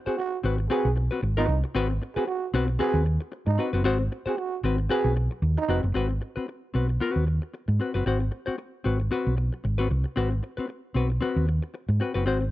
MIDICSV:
0, 0, Header, 1, 6, 480
1, 0, Start_track
1, 0, Tempo, 525394
1, 1603, Time_signature, 4, 2, 24, 8
1, 11432, End_track
2, 0, Start_track
2, 0, Title_t, "Trombone"
2, 0, Program_c, 0, 57
2, 58, Note_on_c, 0, 68, 93
2, 143, Note_off_c, 0, 68, 0
2, 156, Note_on_c, 0, 66, 107
2, 352, Note_off_c, 0, 66, 0
2, 637, Note_on_c, 0, 68, 112
2, 832, Note_off_c, 0, 68, 0
2, 1256, Note_on_c, 0, 63, 97
2, 1449, Note_off_c, 0, 63, 0
2, 1971, Note_on_c, 0, 68, 98
2, 2058, Note_off_c, 0, 68, 0
2, 2075, Note_on_c, 0, 66, 103
2, 2270, Note_off_c, 0, 66, 0
2, 2554, Note_on_c, 0, 68, 116
2, 2749, Note_off_c, 0, 68, 0
2, 3165, Note_on_c, 0, 63, 93
2, 3361, Note_off_c, 0, 63, 0
2, 3897, Note_on_c, 0, 68, 92
2, 3997, Note_on_c, 0, 66, 100
2, 4011, Note_off_c, 0, 68, 0
2, 4191, Note_off_c, 0, 66, 0
2, 4481, Note_on_c, 0, 68, 111
2, 4673, Note_off_c, 0, 68, 0
2, 5094, Note_on_c, 0, 63, 101
2, 5287, Note_off_c, 0, 63, 0
2, 11432, End_track
3, 0, Start_track
3, 0, Title_t, "Hollow-body jazz guitar"
3, 0, Program_c, 1, 26
3, 56, Note_on_c, 1, 72, 60
3, 65, Note_on_c, 1, 66, 54
3, 72, Note_on_c, 1, 60, 47
3, 155, Note_off_c, 1, 72, 0
3, 160, Note_off_c, 1, 60, 0
3, 160, Note_off_c, 1, 66, 0
3, 397, Note_on_c, 1, 60, 66
3, 408, Note_on_c, 1, 66, 64
3, 416, Note_on_c, 1, 71, 78
3, 523, Note_off_c, 1, 71, 0
3, 525, Note_off_c, 1, 60, 0
3, 530, Note_off_c, 1, 66, 0
3, 639, Note_on_c, 1, 60, 83
3, 647, Note_on_c, 1, 66, 82
3, 653, Note_on_c, 1, 71, 87
3, 795, Note_off_c, 1, 60, 0
3, 799, Note_off_c, 1, 66, 0
3, 802, Note_off_c, 1, 71, 0
3, 1012, Note_on_c, 1, 71, 61
3, 1023, Note_on_c, 1, 66, 56
3, 1031, Note_on_c, 1, 60, 48
3, 1110, Note_off_c, 1, 60, 0
3, 1113, Note_off_c, 1, 71, 0
3, 1118, Note_off_c, 1, 66, 0
3, 1253, Note_on_c, 1, 71, 85
3, 1261, Note_on_c, 1, 66, 75
3, 1270, Note_on_c, 1, 60, 69
3, 1347, Note_off_c, 1, 60, 0
3, 1353, Note_off_c, 1, 66, 0
3, 1358, Note_off_c, 1, 71, 0
3, 1595, Note_on_c, 1, 60, 84
3, 1604, Note_on_c, 1, 66, 85
3, 1608, Note_on_c, 1, 71, 101
3, 1725, Note_off_c, 1, 71, 0
3, 1733, Note_off_c, 1, 66, 0
3, 1752, Note_off_c, 1, 60, 0
3, 1976, Note_on_c, 1, 71, 67
3, 1983, Note_on_c, 1, 66, 62
3, 1991, Note_on_c, 1, 60, 48
3, 2064, Note_off_c, 1, 60, 0
3, 2070, Note_off_c, 1, 66, 0
3, 2074, Note_off_c, 1, 71, 0
3, 2317, Note_on_c, 1, 60, 79
3, 2325, Note_on_c, 1, 66, 79
3, 2334, Note_on_c, 1, 71, 82
3, 2437, Note_off_c, 1, 71, 0
3, 2444, Note_off_c, 1, 60, 0
3, 2448, Note_off_c, 1, 66, 0
3, 2549, Note_on_c, 1, 60, 85
3, 2558, Note_on_c, 1, 66, 86
3, 2565, Note_on_c, 1, 71, 88
3, 2779, Note_off_c, 1, 60, 0
3, 2783, Note_off_c, 1, 66, 0
3, 2787, Note_off_c, 1, 71, 0
3, 3270, Note_on_c, 1, 60, 54
3, 3280, Note_on_c, 1, 66, 62
3, 3288, Note_on_c, 1, 71, 69
3, 3397, Note_off_c, 1, 71, 0
3, 3399, Note_off_c, 1, 60, 0
3, 3404, Note_off_c, 1, 66, 0
3, 3408, Note_on_c, 1, 71, 61
3, 3418, Note_on_c, 1, 66, 54
3, 3426, Note_on_c, 1, 60, 47
3, 3500, Note_off_c, 1, 60, 0
3, 3508, Note_off_c, 1, 66, 0
3, 3509, Note_off_c, 1, 71, 0
3, 3511, Note_on_c, 1, 60, 81
3, 3519, Note_on_c, 1, 66, 94
3, 3527, Note_on_c, 1, 72, 95
3, 3646, Note_off_c, 1, 72, 0
3, 3650, Note_off_c, 1, 66, 0
3, 3669, Note_off_c, 1, 60, 0
3, 3889, Note_on_c, 1, 72, 58
3, 3901, Note_on_c, 1, 66, 53
3, 3908, Note_on_c, 1, 60, 52
3, 3984, Note_off_c, 1, 60, 0
3, 3990, Note_off_c, 1, 72, 0
3, 3992, Note_off_c, 1, 66, 0
3, 4238, Note_on_c, 1, 60, 67
3, 4244, Note_on_c, 1, 66, 64
3, 4252, Note_on_c, 1, 71, 67
3, 4360, Note_off_c, 1, 71, 0
3, 4363, Note_off_c, 1, 60, 0
3, 4366, Note_off_c, 1, 66, 0
3, 4471, Note_on_c, 1, 60, 74
3, 4481, Note_on_c, 1, 66, 78
3, 4489, Note_on_c, 1, 71, 94
3, 4699, Note_off_c, 1, 60, 0
3, 4704, Note_off_c, 1, 66, 0
3, 4708, Note_off_c, 1, 71, 0
3, 5194, Note_on_c, 1, 60, 64
3, 5202, Note_on_c, 1, 66, 78
3, 5210, Note_on_c, 1, 71, 70
3, 5316, Note_off_c, 1, 71, 0
3, 5325, Note_off_c, 1, 66, 0
3, 5351, Note_off_c, 1, 60, 0
3, 5429, Note_on_c, 1, 60, 74
3, 5437, Note_on_c, 1, 66, 71
3, 5447, Note_on_c, 1, 71, 80
3, 5556, Note_off_c, 1, 71, 0
3, 5568, Note_off_c, 1, 66, 0
3, 5589, Note_off_c, 1, 60, 0
3, 5808, Note_on_c, 1, 71, 54
3, 5816, Note_on_c, 1, 66, 44
3, 5822, Note_on_c, 1, 60, 45
3, 5910, Note_off_c, 1, 71, 0
3, 5911, Note_off_c, 1, 60, 0
3, 5914, Note_off_c, 1, 66, 0
3, 6155, Note_on_c, 1, 60, 53
3, 6163, Note_on_c, 1, 66, 51
3, 6173, Note_on_c, 1, 71, 60
3, 6283, Note_off_c, 1, 60, 0
3, 6286, Note_off_c, 1, 71, 0
3, 6287, Note_off_c, 1, 66, 0
3, 6398, Note_on_c, 1, 60, 61
3, 6407, Note_on_c, 1, 66, 74
3, 6415, Note_on_c, 1, 71, 73
3, 6624, Note_off_c, 1, 60, 0
3, 6628, Note_off_c, 1, 66, 0
3, 6632, Note_off_c, 1, 71, 0
3, 7122, Note_on_c, 1, 60, 47
3, 7132, Note_on_c, 1, 66, 50
3, 7139, Note_on_c, 1, 71, 50
3, 7245, Note_off_c, 1, 71, 0
3, 7248, Note_off_c, 1, 60, 0
3, 7252, Note_off_c, 1, 66, 0
3, 7256, Note_on_c, 1, 71, 52
3, 7266, Note_on_c, 1, 66, 49
3, 7275, Note_on_c, 1, 60, 46
3, 7353, Note_off_c, 1, 60, 0
3, 7355, Note_off_c, 1, 71, 0
3, 7360, Note_off_c, 1, 66, 0
3, 7364, Note_on_c, 1, 60, 70
3, 7373, Note_on_c, 1, 66, 75
3, 7378, Note_on_c, 1, 72, 83
3, 7492, Note_off_c, 1, 72, 0
3, 7495, Note_off_c, 1, 66, 0
3, 7518, Note_off_c, 1, 60, 0
3, 7728, Note_on_c, 1, 72, 60
3, 7738, Note_on_c, 1, 66, 56
3, 7745, Note_on_c, 1, 60, 47
3, 7827, Note_off_c, 1, 60, 0
3, 7832, Note_off_c, 1, 66, 0
3, 7832, Note_off_c, 1, 72, 0
3, 8079, Note_on_c, 1, 60, 58
3, 8088, Note_on_c, 1, 66, 57
3, 8096, Note_on_c, 1, 71, 60
3, 8207, Note_off_c, 1, 60, 0
3, 8209, Note_off_c, 1, 71, 0
3, 8212, Note_off_c, 1, 66, 0
3, 8321, Note_on_c, 1, 60, 67
3, 8328, Note_on_c, 1, 66, 83
3, 8337, Note_on_c, 1, 71, 77
3, 8547, Note_off_c, 1, 60, 0
3, 8551, Note_off_c, 1, 66, 0
3, 8555, Note_off_c, 1, 71, 0
3, 8936, Note_on_c, 1, 71, 78
3, 8944, Note_on_c, 1, 66, 72
3, 8955, Note_on_c, 1, 60, 64
3, 9035, Note_off_c, 1, 60, 0
3, 9039, Note_off_c, 1, 66, 0
3, 9047, Note_off_c, 1, 71, 0
3, 9281, Note_on_c, 1, 60, 71
3, 9292, Note_on_c, 1, 66, 86
3, 9301, Note_on_c, 1, 71, 85
3, 9406, Note_off_c, 1, 71, 0
3, 9419, Note_off_c, 1, 66, 0
3, 9438, Note_off_c, 1, 60, 0
3, 9658, Note_on_c, 1, 71, 58
3, 9668, Note_on_c, 1, 66, 43
3, 9677, Note_on_c, 1, 60, 50
3, 9748, Note_off_c, 1, 60, 0
3, 9756, Note_off_c, 1, 66, 0
3, 9758, Note_off_c, 1, 71, 0
3, 9999, Note_on_c, 1, 60, 64
3, 10013, Note_on_c, 1, 66, 66
3, 10019, Note_on_c, 1, 71, 68
3, 10128, Note_off_c, 1, 60, 0
3, 10130, Note_off_c, 1, 71, 0
3, 10135, Note_off_c, 1, 66, 0
3, 10238, Note_on_c, 1, 60, 73
3, 10249, Note_on_c, 1, 66, 73
3, 10254, Note_on_c, 1, 71, 81
3, 10467, Note_off_c, 1, 60, 0
3, 10472, Note_off_c, 1, 66, 0
3, 10475, Note_off_c, 1, 71, 0
3, 10962, Note_on_c, 1, 60, 54
3, 10971, Note_on_c, 1, 66, 55
3, 10981, Note_on_c, 1, 71, 63
3, 11084, Note_off_c, 1, 71, 0
3, 11090, Note_off_c, 1, 60, 0
3, 11091, Note_off_c, 1, 66, 0
3, 11095, Note_on_c, 1, 71, 69
3, 11102, Note_on_c, 1, 66, 58
3, 11112, Note_on_c, 1, 60, 46
3, 11187, Note_off_c, 1, 60, 0
3, 11197, Note_off_c, 1, 66, 0
3, 11197, Note_off_c, 1, 71, 0
3, 11198, Note_on_c, 1, 60, 74
3, 11208, Note_on_c, 1, 66, 84
3, 11215, Note_on_c, 1, 72, 89
3, 11332, Note_off_c, 1, 72, 0
3, 11337, Note_off_c, 1, 66, 0
3, 11357, Note_off_c, 1, 60, 0
3, 11432, End_track
4, 0, Start_track
4, 0, Title_t, "Fingered electric bass"
4, 0, Program_c, 2, 33
4, 401, Note_on_c, 2, 32, 87
4, 609, Note_off_c, 2, 32, 0
4, 776, Note_on_c, 2, 35, 85
4, 983, Note_off_c, 2, 35, 0
4, 1119, Note_on_c, 2, 32, 88
4, 1327, Note_off_c, 2, 32, 0
4, 1356, Note_on_c, 2, 36, 98
4, 1475, Note_off_c, 2, 36, 0
4, 1599, Note_on_c, 2, 32, 96
4, 1807, Note_off_c, 2, 32, 0
4, 2317, Note_on_c, 2, 35, 76
4, 2526, Note_off_c, 2, 35, 0
4, 2684, Note_on_c, 2, 39, 87
4, 2896, Note_off_c, 2, 39, 0
4, 3168, Note_on_c, 2, 44, 78
4, 3262, Note_off_c, 2, 44, 0
4, 3408, Note_on_c, 2, 30, 90
4, 3517, Note_off_c, 2, 30, 0
4, 3517, Note_on_c, 2, 32, 97
4, 3725, Note_off_c, 2, 32, 0
4, 4234, Note_on_c, 2, 32, 91
4, 4443, Note_off_c, 2, 32, 0
4, 4609, Note_on_c, 2, 35, 83
4, 4819, Note_off_c, 2, 35, 0
4, 4953, Note_on_c, 2, 39, 94
4, 5072, Note_off_c, 2, 39, 0
4, 5195, Note_on_c, 2, 29, 91
4, 5313, Note_off_c, 2, 29, 0
4, 5332, Note_on_c, 2, 30, 88
4, 5425, Note_off_c, 2, 30, 0
4, 5440, Note_on_c, 2, 32, 86
4, 5647, Note_off_c, 2, 32, 0
4, 6165, Note_on_c, 2, 35, 67
4, 6371, Note_off_c, 2, 35, 0
4, 6540, Note_on_c, 2, 39, 65
4, 6746, Note_off_c, 2, 39, 0
4, 7019, Note_on_c, 2, 44, 79
4, 7110, Note_off_c, 2, 44, 0
4, 7259, Note_on_c, 2, 30, 77
4, 7350, Note_off_c, 2, 30, 0
4, 7364, Note_on_c, 2, 32, 84
4, 7571, Note_off_c, 2, 32, 0
4, 8091, Note_on_c, 2, 32, 75
4, 8296, Note_off_c, 2, 32, 0
4, 8466, Note_on_c, 2, 35, 81
4, 8671, Note_off_c, 2, 35, 0
4, 8813, Note_on_c, 2, 32, 84
4, 9018, Note_off_c, 2, 32, 0
4, 9053, Note_on_c, 2, 36, 89
4, 9167, Note_off_c, 2, 36, 0
4, 9290, Note_on_c, 2, 32, 85
4, 9496, Note_off_c, 2, 32, 0
4, 10006, Note_on_c, 2, 35, 71
4, 10214, Note_off_c, 2, 35, 0
4, 10382, Note_on_c, 2, 39, 76
4, 10589, Note_off_c, 2, 39, 0
4, 10860, Note_on_c, 2, 44, 84
4, 10952, Note_off_c, 2, 44, 0
4, 11101, Note_on_c, 2, 30, 90
4, 11208, Note_off_c, 2, 30, 0
4, 11208, Note_on_c, 2, 32, 85
4, 11415, Note_off_c, 2, 32, 0
4, 11432, End_track
5, 0, Start_track
5, 0, Title_t, "Muted fingered electric bass strokes"
5, 60, Note_on_c, 9, 29, 46
5, 152, Note_off_c, 9, 29, 0
5, 643, Note_on_c, 9, 29, 49
5, 735, Note_off_c, 9, 29, 0
5, 1976, Note_on_c, 9, 29, 51
5, 2067, Note_off_c, 9, 29, 0
5, 3891, Note_on_c, 9, 29, 44
5, 3982, Note_off_c, 9, 29, 0
5, 5817, Note_on_c, 9, 29, 46
5, 5908, Note_off_c, 9, 29, 0
5, 7742, Note_on_c, 9, 29, 41
5, 7834, Note_off_c, 9, 29, 0
5, 9666, Note_on_c, 9, 29, 41
5, 9757, Note_off_c, 9, 29, 0
5, 10253, Note_on_c, 9, 29, 43
5, 10344, Note_off_c, 9, 29, 0
5, 11432, End_track
6, 0, Start_track
6, 0, Title_t, "Muted hollow-body jazz guitar strokes"
6, 170, Note_on_c, 9, 29, 46
6, 262, Note_off_c, 9, 29, 0
6, 534, Note_on_c, 9, 29, 49
6, 625, Note_off_c, 9, 29, 0
6, 875, Note_on_c, 9, 29, 39
6, 967, Note_off_c, 9, 29, 0
6, 1121, Note_on_c, 9, 29, 43
6, 1212, Note_off_c, 9, 29, 0
6, 1358, Note_on_c, 9, 29, 37
6, 1449, Note_off_c, 9, 29, 0
6, 1496, Note_on_c, 9, 29, 51
6, 1587, Note_off_c, 9, 29, 0
6, 1736, Note_on_c, 9, 29, 47
6, 1827, Note_off_c, 9, 29, 0
6, 1842, Note_on_c, 9, 29, 47
6, 1934, Note_off_c, 9, 29, 0
6, 2075, Note_on_c, 9, 29, 34
6, 2166, Note_off_c, 9, 29, 0
6, 2448, Note_on_c, 9, 29, 54
6, 2540, Note_off_c, 9, 29, 0
6, 2791, Note_on_c, 9, 29, 37
6, 2882, Note_off_c, 9, 29, 0
6, 2928, Note_on_c, 9, 29, 49
6, 3019, Note_off_c, 9, 29, 0
6, 3031, Note_on_c, 9, 29, 49
6, 3122, Note_off_c, 9, 29, 0
6, 3165, Note_on_c, 9, 29, 48
6, 3257, Note_off_c, 9, 29, 0
6, 3650, Note_on_c, 9, 29, 37
6, 3741, Note_off_c, 9, 29, 0
6, 3761, Note_on_c, 9, 29, 45
6, 3853, Note_off_c, 9, 29, 0
6, 3995, Note_on_c, 9, 29, 34
6, 4086, Note_off_c, 9, 29, 0
6, 4370, Note_on_c, 9, 29, 43
6, 4462, Note_off_c, 9, 29, 0
6, 4713, Note_on_c, 9, 29, 45
6, 4804, Note_off_c, 9, 29, 0
6, 4851, Note_on_c, 9, 29, 40
6, 4943, Note_off_c, 9, 29, 0
6, 5093, Note_on_c, 9, 29, 46
6, 5185, Note_off_c, 9, 29, 0
6, 5327, Note_on_c, 9, 29, 43
6, 5418, Note_off_c, 9, 29, 0
6, 5566, Note_on_c, 9, 29, 33
6, 5658, Note_off_c, 9, 29, 0
6, 5673, Note_on_c, 9, 29, 34
6, 5764, Note_off_c, 9, 29, 0
6, 5922, Note_on_c, 9, 29, 34
6, 6013, Note_off_c, 9, 29, 0
6, 6297, Note_on_c, 9, 29, 34
6, 6389, Note_off_c, 9, 29, 0
6, 6638, Note_on_c, 9, 29, 36
6, 6730, Note_off_c, 9, 29, 0
6, 6779, Note_on_c, 9, 29, 39
6, 6870, Note_off_c, 9, 29, 0
6, 6885, Note_on_c, 9, 29, 38
6, 6976, Note_off_c, 9, 29, 0
6, 7016, Note_on_c, 9, 29, 39
6, 7107, Note_off_c, 9, 29, 0
6, 7496, Note_on_c, 9, 29, 45
6, 7587, Note_off_c, 9, 29, 0
6, 7594, Note_on_c, 9, 29, 34
6, 7685, Note_off_c, 9, 29, 0
6, 7838, Note_on_c, 9, 29, 38
6, 7930, Note_off_c, 9, 29, 0
6, 8220, Note_on_c, 9, 29, 44
6, 8312, Note_off_c, 9, 29, 0
6, 8557, Note_on_c, 9, 29, 38
6, 8648, Note_off_c, 9, 29, 0
6, 8702, Note_on_c, 9, 29, 36
6, 8794, Note_off_c, 9, 29, 0
6, 8805, Note_on_c, 9, 29, 44
6, 8897, Note_off_c, 9, 29, 0
6, 9046, Note_on_c, 9, 29, 27
6, 9137, Note_off_c, 9, 29, 0
6, 9174, Note_on_c, 9, 29, 41
6, 9266, Note_off_c, 9, 29, 0
6, 9417, Note_on_c, 9, 29, 34
6, 9508, Note_off_c, 9, 29, 0
6, 9527, Note_on_c, 9, 29, 46
6, 9619, Note_off_c, 9, 29, 0
6, 9759, Note_on_c, 9, 29, 33
6, 9851, Note_off_c, 9, 29, 0
6, 10141, Note_on_c, 9, 29, 44
6, 10233, Note_off_c, 9, 29, 0
6, 10486, Note_on_c, 9, 29, 35
6, 10577, Note_off_c, 9, 29, 0
6, 10621, Note_on_c, 9, 29, 50
6, 10712, Note_off_c, 9, 29, 0
6, 10724, Note_on_c, 9, 29, 44
6, 10815, Note_off_c, 9, 29, 0
6, 10859, Note_on_c, 9, 29, 49
6, 10950, Note_off_c, 9, 29, 0
6, 11336, Note_on_c, 9, 29, 37
6, 11427, Note_off_c, 9, 29, 0
6, 11432, End_track
0, 0, End_of_file